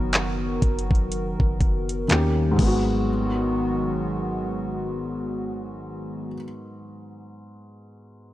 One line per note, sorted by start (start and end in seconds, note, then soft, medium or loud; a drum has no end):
0.00 0.59 F#1 loud
0.00 2.55 D#3 medium
0.00 2.06 F#3 medium
0.00 2.04 B3 medium
0.00 2.07 B3 medium
0.00 2.06 D#4 medium
0.00 2.07 F#4 medium
0.00 2.06 A#4 medium
0.00 2.08 A#4 medium
0.13 clap loud
0.13 closed hi-hat medium
0.62 1.37 F#1 loud
0.62 kick medium
0.62 closed hi-hat medium
0.79 closed hi-hat soft
0.91 kick loud
0.95 closed hi-hat soft
1.12 closed hi-hat medium
1.40 2.07 F#1 loud
1.40 kick medium
1.61 kick medium
1.61 closed hi-hat soft
1.89 closed hi-hat medium
2.08 2.57 D#2 loud
2.08 2.58 D#3 medium
2.08 2.58 G3 medium
2.08 2.59 A#3 medium
2.08 2.58 A#3 medium
2.08 2.58 C#4 medium
2.08 2.59 C#4 medium
2.08 2.58 G4 medium
2.08 2.60 G4 medium
2.08 clap loud
2.08 closed hi-hat medium
2.51 6.26 G#2 medium
2.56 6.34 G#1 loud
2.56 6.34 D#3 medium
2.56 6.34 F#3 medium
2.56 6.32 G#3 medium
2.56 6.34 G#3 medium
2.56 6.34 B3 medium
2.56 6.34 F#4 medium
2.56 kick loud
2.56 crash medium
2.62 6.37 B3 medium
2.67 6.42 F#4 medium